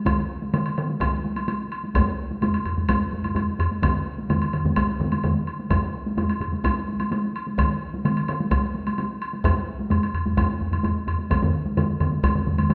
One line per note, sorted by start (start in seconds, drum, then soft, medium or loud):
0.06 taiko medium
0.06 taiko mid medium
0.06 taiko high medium
0.06 high woodblock soft
0.42 taiko high soft
0.54 taiko mid medium
0.54 taiko high medium
0.54 high woodblock soft
0.66 high woodblock soft
0.78 taiko mid medium
0.78 high woodblock soft
0.89 taiko high soft
1.01 taiko medium
1.01 taiko high medium
1.01 high woodblock soft
1.25 taiko high soft
1.36 taiko high soft
1.36 high woodblock soft
1.48 taiko high medium
1.48 high woodblock soft
1.72 high woodblock soft
1.84 taiko high soft
1.94 taiko medium
1.94 taiko low-mid medium
1.94 taiko high medium
1.94 high woodblock soft
2.31 taiko high soft
2.42 taiko low-mid medium
2.42 taiko high medium
2.42 high woodblock soft
2.54 high woodblock soft
2.65 taiko low-mid medium
2.65 high woodblock soft
2.77 taiko low-mid medium
2.77 taiko high soft
2.88 taiko medium
2.88 taiko low-mid medium
2.88 taiko high medium
2.88 high woodblock soft
3.12 taiko low-mid medium
3.12 taiko high soft
3.24 taiko low-mid medium
3.24 taiko high soft
3.24 high woodblock soft
3.35 taiko low-mid medium
3.35 taiko high medium
3.35 high woodblock soft
3.59 taiko low-mid medium
3.59 high woodblock soft
3.72 taiko high soft
3.82 taiko medium
3.82 taiko low-mid medium
3.82 taiko mid medium
3.82 taiko high medium
3.82 high woodblock medium
4.19 taiko high soft
4.29 taiko low-mid medium
4.29 taiko mid medium
4.29 taiko high medium
4.29 high woodblock soft
4.42 high woodblock soft
4.53 taiko low-mid medium
4.53 taiko mid medium
4.53 high woodblock soft
4.65 taiko low-mid medium
4.65 taiko mid medium
4.65 taiko high soft
4.76 taiko medium
4.76 taiko high medium
4.76 high woodblock soft
5.00 taiko low-mid medium
5.00 taiko mid medium
5.00 taiko high soft
5.12 taiko high soft
5.12 high woodblock soft
5.24 taiko low-mid medium
5.24 taiko mid medium
5.24 taiko high medium
5.24 high woodblock soft
5.47 high woodblock soft
5.60 taiko high soft
5.71 taiko medium
5.71 taiko low-mid medium
5.71 taiko high medium
5.71 high woodblock soft
6.06 taiko high medium
6.17 taiko low-mid medium
6.17 taiko high medium
6.17 high woodblock soft
6.29 high woodblock soft
6.40 taiko low-mid medium
6.40 high woodblock soft
6.53 taiko high soft
6.64 taiko medium
6.64 taiko high medium
6.64 high woodblock soft
6.88 taiko high soft
7.00 taiko high soft
7.00 high woodblock soft
7.11 taiko high medium
7.11 high woodblock soft
7.36 high woodblock soft
7.47 taiko high soft
7.58 taiko medium
7.58 taiko mid medium
7.58 taiko high medium
7.58 high woodblock medium
7.94 taiko high soft
8.05 taiko mid medium
8.05 taiko high medium
8.05 high woodblock soft
8.17 high woodblock soft
8.28 taiko mid medium
8.28 high woodblock soft
8.40 taiko high soft
8.51 taiko medium
8.51 taiko high medium
8.51 high woodblock soft
8.75 taiko high soft
8.87 taiko high soft
8.87 high woodblock soft
8.98 taiko high medium
8.98 high woodblock soft
9.22 high woodblock soft
9.33 taiko high soft
9.44 taiko medium
9.44 taiko low-mid medium
9.44 taiko high medium
9.44 high woodblock soft
9.79 taiko high soft
9.90 taiko low-mid medium
9.90 taiko high medium
9.90 high woodblock soft
10.03 high woodblock soft
10.14 taiko low-mid medium
10.14 high woodblock soft
10.26 taiko low-mid medium
10.26 taiko high soft
10.37 taiko medium
10.37 taiko low-mid medium
10.37 taiko high medium
10.37 high woodblock soft
10.61 taiko low-mid medium
10.61 taiko high soft
10.72 taiko low-mid medium
10.72 taiko high soft
10.72 high woodblock soft
10.84 taiko low-mid medium
10.84 taiko high medium
10.84 high woodblock soft
11.07 taiko low-mid medium
11.07 high woodblock soft
11.19 taiko high soft
11.30 taiko medium
11.30 taiko low-mid medium
11.30 taiko mid medium
11.30 taiko high medium
11.30 high woodblock soft
11.42 taiko low-mid medium
11.42 taiko mid medium
11.66 taiko high soft
11.77 taiko low-mid medium
11.77 taiko mid medium
11.77 taiko high medium
11.77 high woodblock soft
12.00 taiko low-mid medium
12.00 taiko mid medium
12.00 high woodblock soft
12.12 taiko high soft
12.23 taiko medium
12.23 taiko low-mid medium
12.23 taiko mid medium
12.23 taiko high medium
12.23 high woodblock soft
12.35 taiko low-mid medium
12.35 taiko mid medium
12.47 taiko low-mid medium
12.47 taiko mid medium
12.47 taiko high soft
12.58 taiko low-mid medium
12.58 taiko mid medium
12.58 taiko high soft
12.58 high woodblock soft
12.70 taiko low-mid medium
12.70 taiko mid medium
12.70 taiko high medium
12.70 high woodblock soft